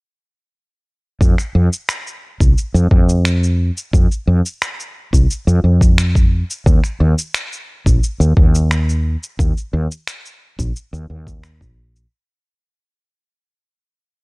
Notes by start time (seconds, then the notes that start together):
1.21 F2, kick, shaker
1.38 finger snap, shaker
1.55 F2
1.73 shaker
1.89 finger snap, shaker
2.07 shaker
2.40 C2, kick, shaker
2.58 shaker
2.74 F2, shaker
2.91 F2, kick
3.09 shaker
3.25 finger snap, shaker
3.43 shaker
3.77 shaker
3.93 F2, kick, shaker
4.12 shaker
4.27 F2
4.46 shaker
4.62 finger snap, shaker
4.80 shaker
5.13 C2, kick, shaker
5.31 shaker
5.47 F2, shaker
5.64 F2
5.81 kick, shaker
5.98 finger snap, shaker
6.15 kick, shaker
6.50 shaker
6.66 D#2, kick, shaker
6.84 finger snap, shaker
7.00 D#2
7.18 shaker
7.34 finger snap, shaker
7.53 shaker
7.86 A#1, kick, shaker
8.03 shaker
8.20 D#2, shaker
8.37 D#2, kick
8.55 shaker
8.71 finger snap, shaker
8.89 shaker
9.23 shaker
9.39 D#2, kick, shaker
9.57 shaker
9.73 D#2
9.91 shaker
10.07 finger snap, shaker
10.25 shaker
10.59 A#1, kick, shaker
10.76 shaker
10.93 D#2, shaker
11.10 D#2
11.27 kick, shaker
11.43 finger snap, shaker
11.61 A#1, kick, shaker
11.96 shaker